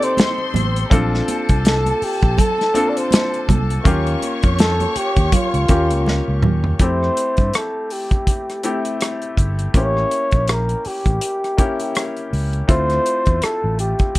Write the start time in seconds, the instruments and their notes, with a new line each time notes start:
Already playing: grand piano C4 D#4 G4 A4, string section D5 D6
0.02 flugelhorn C5, closed hi-hat
0.17 string section C5 C6, snare, closed hi-hat, muted conga, high conga
0.38 muted conga
0.54 fingered electric bass A1, closed hi-hat, high conga, low conga
0.76 closed hi-hat
0.90 fingered electric bass A#1, grand piano C4 D4 F4 A4, string section A4 A5, kick, closed hi-hat, muted conga, low conga
1.14 snare
1.28 closed hi-hat, high conga
1.49 fingered electric bass C2, kick, closed hi-hat
1.65 flugelhorn A4, snare, closed hi-hat, muted conga
1.86 closed hi-hat, high conga
2.02 flugelhorn G4, muted fingered electric bass stroke, open hi-hat
2.23 fingered electric bass A#1, kick, closed hi-hat
2.38 flugelhorn A4, kick, closed hi-hat, low conga
2.58 snare, closed hi-hat, muted conga
2.74 grand piano C4 D4 F4 A4, closed hi-hat, high conga
2.89 flugelhorn D5
2.97 flugelhorn C5, closed hi-hat
3.11 snare, closed hi-hat, muted conga, high conga
3.34 closed hi-hat
3.49 fingered electric bass C2, kick, closed hi-hat, high conga, low conga
3.70 closed hi-hat
3.84 fingered electric bass D#2, grand piano A#3 C#4 F4 G4, string section C#5 C#6, kick, closed hi-hat, muted conga, low conga
4.07 closed hi-hat
4.22 closed hi-hat, high conga
4.43 fingered electric bass F2, kick, closed hi-hat
4.59 flugelhorn A4, snare, closed hi-hat, muted conga
4.80 closed hi-hat, muted conga, high conga
4.96 flugelhorn G4, muted fingered electric bass stroke, closed hi-hat
5.16 fingered electric bass D#2, kick, closed hi-hat
5.32 flugelhorn F4, kick, closed hi-hat, muted conga, low conga
5.54 fingered electric bass C#2, closed hi-hat, muted conga
5.68 fingered electric bass D#2, grand piano A#3 C#4 F4 G4, kick, closed hi-hat, high conga
5.91 fingered electric bass C#2, closed hi-hat
6.06 snare, muted conga, high conga
6.28 fingered electric bass C#2
6.43 fingered electric bass D#2, mid tom, high conga, low conga
6.64 floor tom
6.79 fingered electric bass F2, grand piano A3 C4 E4 G4, flugelhorn C5, kick, closed hi-hat
7.03 cross-stick
7.17 closed hi-hat
7.37 fingered electric bass G2, kick, closed hi-hat
7.54 flugelhorn A4, cross-stick, closed hi-hat
7.90 flugelhorn G4, open hi-hat
8.11 kick, closed hi-hat
8.27 kick, closed hi-hat
8.50 cross-stick, closed hi-hat
8.63 grand piano A3 C4 E4 G4, closed hi-hat
8.85 closed hi-hat
9.01 cross-stick, closed hi-hat
9.22 closed hi-hat
9.37 fingered electric bass G1, kick, closed hi-hat
9.59 closed hi-hat
9.74 fingered electric bass A1, grand piano A#3 C#4 E4 G4, flugelhorn C#5, kick, closed hi-hat
9.97 cross-stick
10.11 closed hi-hat
10.31 fingered electric bass A#1, kick, closed hi-hat
10.48 flugelhorn A#4, cross-stick, closed hi-hat
10.69 closed hi-hat
10.85 flugelhorn G4, muted fingered electric bass stroke, open hi-hat
11.06 fingered electric bass A1, kick, closed hi-hat
11.21 closed hi-hat
11.44 cross-stick, closed hi-hat
11.57 grand piano A#3 C#4 E4 G4, kick, closed hi-hat
11.80 closed hi-hat
11.95 cross-stick, closed hi-hat
12.17 closed hi-hat
12.33 fingered electric bass C#2, open hi-hat
12.53 closed hi-hat
12.67 fingered electric bass D2, grand piano A3 C4 E4 F4, flugelhorn C5, kick, closed hi-hat
12.90 cross-stick, closed hi-hat
13.06 closed hi-hat
13.26 fingered electric bass E2, kick, closed hi-hat
13.42 flugelhorn A4, muted fingered electric bass stroke, cross-stick, closed hi-hat
13.64 fingered electric bass A1
13.79 flugelhorn G4, closed hi-hat
13.99 kick, closed hi-hat
14.15 kick, closed hi-hat